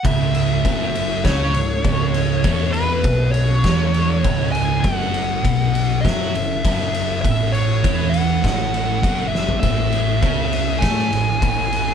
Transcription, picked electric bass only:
X:1
M:4/4
L:1/8
Q:1/4=100
K:C#m
V:1 name="Picked electric bass" clef=bass
C,,,2 F,,,2 C,, C,,, C,,,2 | E,,,2 B,,,2 E,,,2 C,,,2 | F,,,2 B,,,2 F,, F,,, F,,,2 | A,,,2 E,,2 A,,,2 F,,,2 |
A,,,2 C,,2 A,, A,,, A,,,2 |]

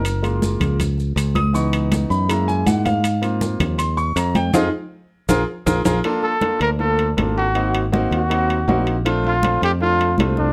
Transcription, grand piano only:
X:1
M:4/4
L:1/8
Q:1/4=160
K:Gb
V:1 name="Grand piano"
B4 z3 e' | d'3 c' b a g f- | f2 z2 =c' d' b =g | [EFA] z3 [FAB] z [FAB] [FAB] |
[K:Bb] [B,DFA] z [B,DFA] z [B,DFA] z [B,DFA] z | [B,CE_G] z [B,CEG] z [B,CEG] z [B,CEG] z | [A,CDF] z [A,CDF] z [A,CDF] z [A,CDF] z |]
V:2 name="Grand piano"
z [A,B,F]3 z4 | [_F,CE]4 [A,B,_F]4 | z [B,=CF]3 z4 | z8 |
[K:Bb] z8 | z8 | z8 |]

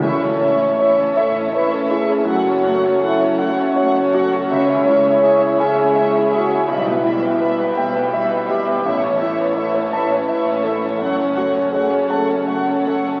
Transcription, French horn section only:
X:1
M:6/8
L:1/16
Q:3/8=55
K:A
V:1 name="French horn section"
c6 A2 B A G2 | F4 E2 F4- F A | c6 G4 F2 | E4 z8 |
c3 B A c B4 A2 | c4 G2 A6 |]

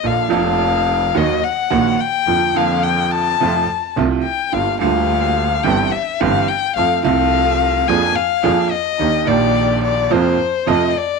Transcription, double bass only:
X:1
M:4/4
L:1/8
Q:1/4=107
K:Bb
V:1 name="Double bass" clef=bass
B,,, F,,,3 E,, z B,,, z | F,, F,,3 F,, z C,, z | G,,, D,,3 G,,, z G,,, z | F,, C,,3 F,, z F,, z |
E,, B,,,3 F,, z F,, z |]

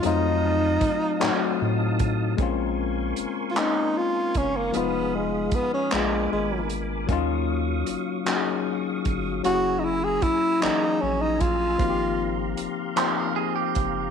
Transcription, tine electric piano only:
X:1
M:6/8
L:1/8
Q:3/8=51
K:Bbm
V:1 name="Tine electric piano"
[G,=A,CEF]2 z [G,A,CEG]2 z | [A,B,CDF]2 z [A,B,CDE]2 z | [F,A,_CEF]2 z [A,B,C=DF]2 z | [G,B,DEF]2 z [G,B,DEGA]2 z |
[G,B,D_F=GA]2 z [_F,_G,B,DA]2 z | [F,B,CEG=G]2 z [F,B,CEG]2 z |]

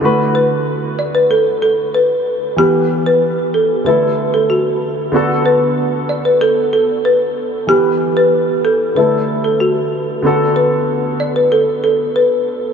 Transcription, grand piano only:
X:1
M:4/4
L:1/8
Q:1/4=94
K:Bm
V:1 name="Grand piano"
[D,A,FB]8 | [E,B,GB]4 [D,A,EA]4 | [D,B,FA]8 | [E,B,GB]4 [D,A,EA]4 |
[D,B,FA]8 |]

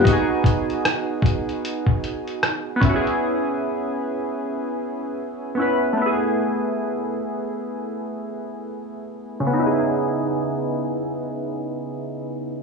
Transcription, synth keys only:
X:1
M:4/4
L:1/8
Q:"Swing 16ths" 1/4=76
K:C#m
V:1 name="Synth keys"
[B,DFG]6- [B,DFG] [B,CEFG]- | [B,CEFG]6 [B,CEB] [A,B,EG]- | [A,B,EG]6- [A,B,EG] z | [C,B,DEG]8 |]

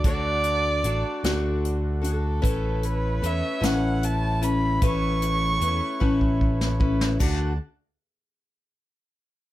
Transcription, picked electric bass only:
X:1
M:6/8
L:1/16
Q:3/8=50
K:D
V:1 name="Picked electric bass" clef=bass
D,,4 A,,, z D,,6 | A,,,4 E,, z A,,,6 | A,,,4 E,, z A,,,6 | D,,2 z8 z2 |]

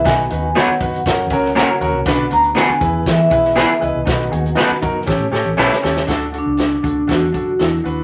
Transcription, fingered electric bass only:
X:1
M:4/4
L:1/16
Q:1/4=120
K:B
V:1 name="Fingered electric bass" clef=bass
B,,,2 D,,2 z2 F,,2 F,,2 C,,3 z D,, ^B,,, | B,,,2 =D,,2 z2 E,,2 E,2 B,,,3 z C,, ^B,,, | B,,,2 D,,2 z2 F,,2 =A,,, =A,, A,, A,,, B,,, z D,,2 | [K:Dlyd] D,,3 C,,3 D,,2 E,,2 F,,2 E,,2 ^D,,2 |]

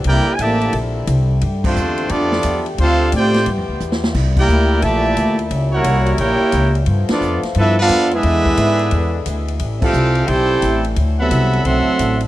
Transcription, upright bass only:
X:1
M:4/4
L:1/8
Q:"Swing" 1/4=176
K:G
V:1 name="Upright bass" clef=bass
C,, z A,,,2 _B,,,2 C,,2 | G,,2 E,,2 =F,,2 E,,2 | D,,2 A,,2 (3G,, =F,, D,, E,,2 | C,,2 D,,2 _B,,,2 D,,2 |
^C,,2 =C,,2 ^A,,, z ^C,,2 | G,, z =F,, z G,,2 F,,2 | E,,2 ^G,,2 E,,2 D,,2 | A,,,2 C,,2 B,,,2 A,,,2 |
D,,2 C,,2 B,,, z A,,,2 |]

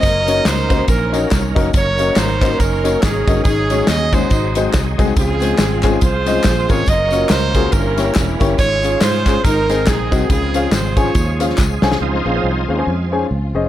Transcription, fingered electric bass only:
X:1
M:4/4
L:1/8
Q:"Swing" 1/4=140
K:Db
V:1 name="Fingered electric bass" clef=bass
G,,,2 D,,2 B,,,2 C,, F,,, | G,,,2 A,,,2 G,,,2 A,,, =G,,, | A,,,2 E,,2 A,,,2 C,, C,, | D,,2 A,,,2 C,,2 B,,, A,,, |
G,,,2 D,,2 =G,,,2 =E,,, G,,, | A,,,2 A,,2 A,,,2 B,,, C,, | D,,2 A,,,2 E,,2 D,, C,, | D,, B,,, C,, E,, F,,2 D,, F,,, |]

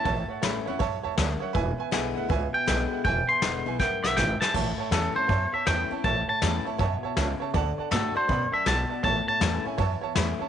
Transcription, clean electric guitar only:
X:1
M:4/4
L:1/8
Q:"Swing" 1/4=160
K:A
V:1 name="Clean electric guitar"
a4- a z3 | z4 z =g3 | =g =c'3 g e g a | z2 A =c2 e =g2 |
a a2 z4 z | z2 A =c2 e a2 | a a2 z4 z |]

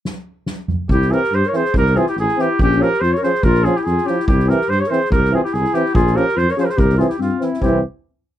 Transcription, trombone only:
X:1
M:2/4
L:1/8
Q:"Swing 16ths" 1/4=142
K:none
V:1 name="Trombone"
z4 | z C z C | z C z C | z _D z D |
z _D z D | z C z C | z C z C | z _D z D |
z C z C | C z3 |]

